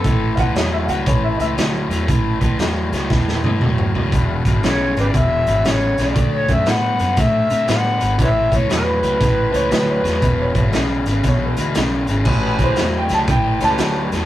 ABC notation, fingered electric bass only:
X:1
M:4/4
L:1/8
Q:"Swing" 1/4=118
K:Amix
V:1 name="Fingered electric bass" clef=bass
A,,, C,, E,, C,, A,,, C,, D,, E,, | A,,, C,, E,, C,, E,, G,, E,, C,, | E,,, ^G,,, B,,, G,,, E,,, G,,, A,,, B,,, | D,, F,, A,, F,, A,, =C, A,, ^G,,, |
A,,, C,, E,, C,, A,,, C,, D,, E,, | E,,, ^G,,, B,,, G,,, B,,, D,, B,,, G,,, | A,,, C,, E,, C,, A,,, C,, D,, E,, |]